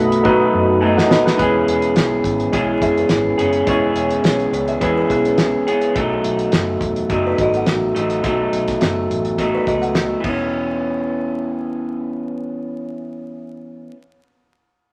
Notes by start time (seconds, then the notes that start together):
Already playing: B1 B2 F#3 A3 D#4 F#4 A4 B4 D#5 F#5 B5
0.12 closed hi-hat
0.23 B2 F#3 A3 D#4 F#4 B4, kick
0.54 F#2
0.81 B2 F#3 A3 D#4 G#5
0.97 D#5 F#5, snare
1.09 B4 D#5, snare
1.26 G#4 B4, snare
1.37 E1 E3 G#3 B3 C#4 E4 B4, kick, closed hi-hat
1.41 G#4
1.68 E1, closed hi-hat
1.82 closed hi-hat
1.96 B1, snare, closed hi-hat
2.24 G#1, kick, closed hi-hat
2.40 closed hi-hat
2.51 B1 E3 G#3 B3 C#4 E4 G#4 C#5, kick, closed hi-hat
2.82 F#1 G#4 E5, kick, closed hi-hat
2.98 B4, closed hi-hat
3.09 G#1, snare, closed hi-hat
3.38 F#1 B3 C#4 G#4, closed hi-hat
3.53 closed hi-hat
3.66 E1 E3 G#3 B3 C#4 E4 G#4 C#5, kick, closed hi-hat
3.95 E1, closed hi-hat
4.10 closed hi-hat
4.24 B1, snare, closed hi-hat
4.40 closed hi-hat
4.52 C#2 E4 C#5, closed hi-hat
4.68 G#4 E5, closed hi-hat
4.80 E2 E3 G#3 B3 C#4 E4 G#4 B4 C#5, kick, closed hi-hat
4.98 B4
5.10 B1 B3 G#4, kick, closed hi-hat
5.25 B4, closed hi-hat
5.38 snare, closed hi-hat
5.67 B3 C#4 G#4, closed hi-hat
5.81 closed hi-hat
5.94 B1 B2 F#3 A3 D#4, kick, closed hi-hat
6.24 B1, closed hi-hat
6.39 closed hi-hat
6.52 F#1, snare, closed hi-hat
6.81 E1, kick, closed hi-hat
6.96 closed hi-hat
7.10 F#1 B2 F#3 A3 D#4 A4, kick, closed hi-hat
7.27 D#4 B4
7.38 G#1 F#4 D#5, kick, closed hi-hat
7.54 A4 F#5, closed hi-hat
7.66 A1, snare, closed hi-hat
7.95 A1 F#3 A3 D#4, closed hi-hat
8.10 closed hi-hat
8.23 B1 B2 F#3 A3 D#4, kick, closed hi-hat
8.53 B1, closed hi-hat
8.68 kick, snare, closed hi-hat
8.81 F#1, snare, closed hi-hat
9.11 A1, closed hi-hat
9.25 closed hi-hat
9.38 B2 F#3 A3 D#4 A4, kick, closed hi-hat
9.55 D#4 B4
9.67 C#2 F#4 D#5, kick, closed hi-hat
9.82 A4 F#5, closed hi-hat
9.95 snare, closed hi-hat
10.20 E3, kick, ride
10.24 E1 B3 C#4